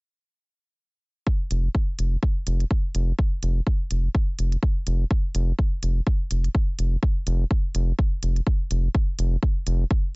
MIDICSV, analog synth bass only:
0, 0, Header, 1, 2, 480
1, 0, Start_track
1, 0, Tempo, 480000
1, 1267, Time_signature, 4, 2, 24, 8
1, 10153, End_track
2, 0, Start_track
2, 0, Title_t, "Analog synth bass"
2, 0, Program_c, 0, 38
2, 1507, Note_on_c, 0, 29, 100
2, 1685, Note_off_c, 0, 29, 0
2, 1987, Note_on_c, 0, 29, 82
2, 2165, Note_off_c, 0, 29, 0
2, 2466, Note_on_c, 0, 29, 80
2, 2645, Note_off_c, 0, 29, 0
2, 2947, Note_on_c, 0, 29, 82
2, 3125, Note_off_c, 0, 29, 0
2, 3427, Note_on_c, 0, 29, 102
2, 3605, Note_off_c, 0, 29, 0
2, 3906, Note_on_c, 0, 29, 84
2, 4085, Note_off_c, 0, 29, 0
2, 4387, Note_on_c, 0, 29, 83
2, 4565, Note_off_c, 0, 29, 0
2, 4867, Note_on_c, 0, 29, 82
2, 5045, Note_off_c, 0, 29, 0
2, 5347, Note_on_c, 0, 29, 97
2, 5525, Note_off_c, 0, 29, 0
2, 5826, Note_on_c, 0, 29, 86
2, 6005, Note_off_c, 0, 29, 0
2, 6307, Note_on_c, 0, 29, 83
2, 6485, Note_off_c, 0, 29, 0
2, 6786, Note_on_c, 0, 29, 80
2, 6965, Note_off_c, 0, 29, 0
2, 7266, Note_on_c, 0, 29, 99
2, 7445, Note_off_c, 0, 29, 0
2, 7746, Note_on_c, 0, 29, 82
2, 7925, Note_off_c, 0, 29, 0
2, 8226, Note_on_c, 0, 29, 81
2, 8405, Note_off_c, 0, 29, 0
2, 8706, Note_on_c, 0, 29, 97
2, 8884, Note_off_c, 0, 29, 0
2, 9186, Note_on_c, 0, 29, 96
2, 9365, Note_off_c, 0, 29, 0
2, 9666, Note_on_c, 0, 29, 83
2, 9844, Note_off_c, 0, 29, 0
2, 10153, End_track
0, 0, End_of_file